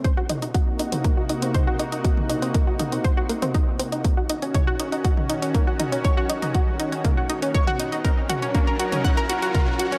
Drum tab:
HH |x-xxx-xxx-xxx-xx|x-xxx-xxx-xxx-xx|x-xxx-xxx-xxx-xx|x-xxx-xxx-xxx-xx|
T2 |--o----o----o---|-o----o----o----|----o----o----o-|---o----o----o--|
BD |o---o---o---o---|o---o---o---o---|o---o---o---o---|o---o---o---o---|

HH |x-xxx-xxx-xxx-xx|
T2 |--o----o----o---|
BD |o---o---o---o---|